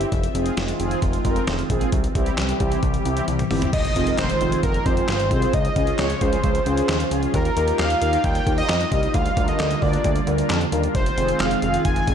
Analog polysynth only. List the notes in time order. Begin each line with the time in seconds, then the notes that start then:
0.35 C4 F4 G#4
0.80 C4 F4 G#4
1.25 C4 F4 A#4
1.70 C4 F4 G#4
2.15 C4 E4 G4
2.60 C4 E4 G4
3.06 C4 E4 G4
3.51 C4 E4 G4
3.96 C4 F4 G#4
4.07 C4 F4 A#4
4.41 C4 F4 G#4
4.86 C4 F4 G4
4.97 C4 F4 G#4
5.31 C4 F4 G#4
5.42 C4 F4 G#4
5.76 C#4 F4 G#4
5.87 C#4 F4 G#4
6.21 C#4 F4 G#4
6.66 C#4 F4 G#4
6.78 C#4 F4 G#4
7.11 C#4 F4 G#4
7.23 C#4 F4 G#4
7.57 D#4 G4 A#4
7.68 D#4 G4 A#4
8.02 D#4 G4 A#4
8.47 D#4 G4 A#4
8.58 D#4 G4 C5
8.92 D#4 G4 A#4
9.03 D#4 G4 C5
9.37 D4 F4 A#4
9.48 D4 F4 A#4
9.82 D4 F4 A#4
10.27 D4 F4 A#4
10.39 D4 F4 A#4
10.72 D4 F4 A#4
10.84 D4 F4 A#4
11.18 C4 F4 G#4
11.29 C4 F4 G#4
11.63 C4 F4 G#4
12.08 C4 F4 G#4